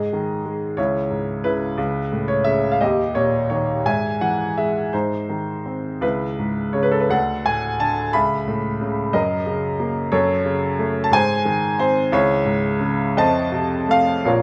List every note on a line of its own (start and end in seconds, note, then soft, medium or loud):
0.00 0.76 G#2 medium
0.00 0.73 G#4 soft
0.00 0.40 D#5 medium
0.13 0.76 D#3 soft
0.46 0.77 G#3 soft
0.77 1.75 C#2 soft
0.77 1.44 E4 soft
0.77 1.46 C#5 medium
1.10 1.76 G#2 soft
1.44 1.77 C#3 soft
1.44 2.43 E4 soft
1.44 2.31 B4 medium
1.78 2.78 C#2 medium
2.12 2.79 A2 soft
2.28 2.46 C#5 medium
2.44 2.80 C#3 soft
2.44 2.74 E5 medium
2.71 2.79 F5 medium
2.81 3.83 D#2 medium
2.81 3.82 G4 medium
2.81 3.17 D#5 medium
3.15 3.84 A#2 soft
3.15 3.48 C#5 medium
3.50 3.85 D#3 soft
3.50 3.86 C#5 medium
3.85 4.90 G#2 medium
3.85 4.56 E5 medium
3.85 4.19 G#5 medium
4.21 4.91 E3 soft
4.21 4.58 F#5 medium
4.58 4.93 G#3 soft
4.58 4.95 E5 medium
4.93 6.00 G#2 soft
4.93 5.99 D#4 soft
4.93 6.06 C5 medium
5.29 6.01 D#3 soft
5.66 6.02 C4 soft
6.01 7.07 C#2 medium
6.01 7.07 E4 soft
6.01 6.76 B4 medium
6.39 7.09 G#2 soft
6.73 7.10 C#3 soft
6.73 6.83 C#5 medium
6.83 6.92 B4 medium
6.91 7.01 A4 medium
7.00 7.10 B4 medium
7.09 8.10 D2 medium
7.09 8.10 A4 soft
7.09 7.47 F#5 medium
7.46 8.13 A2 soft
7.46 7.81 G#5 medium
7.80 8.13 D3 soft
7.80 8.15 A5 medium
8.13 9.10 C#2 medium
8.13 9.09 E5 medium
8.13 8.76 B5 medium
8.47 9.11 A2 soft
8.81 9.13 C#3 soft
9.13 10.09 F#2 medium
9.13 10.08 A#4 soft
9.13 10.08 D#5 medium
9.46 10.10 C#3 soft
9.80 10.11 A#3 soft
10.12 11.09 F#2 medium
10.12 11.08 A4 medium
10.12 11.08 C#5 medium
10.45 11.10 C#3 soft
10.79 11.11 A3 medium
11.04 11.11 A5 medium
11.11 12.09 G#2 medium
11.11 11.78 C5 medium
11.11 11.81 G#5 medium
11.45 12.10 D#3 medium
11.79 12.11 C4 soft
11.79 12.10 C5 medium
12.12 13.13 C#2 medium
12.12 13.85 E4 medium
12.12 13.86 C#5 medium
12.45 13.14 G#2 medium
12.80 13.15 C#3 medium
13.17 14.23 F2 medium
13.17 14.23 C5 medium
13.17 14.22 D#5 medium
13.17 13.92 A5 medium
13.52 14.23 C3 medium
13.88 14.24 A3 medium
13.88 14.28 F5 medium
14.25 14.42 A#1 medium
14.25 14.42 A#2 medium
14.25 14.42 F4 soft
14.25 14.42 A#4 medium
14.25 14.42 C#5 medium